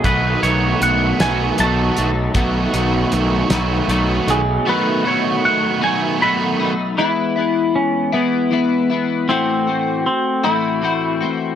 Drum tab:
HH |xxxxxx|xxxxxx|------|------|
SD |---o--|---o--|------|------|
BD |o-----|o-----|------|------|

HH |------|
SD |------|
BD |------|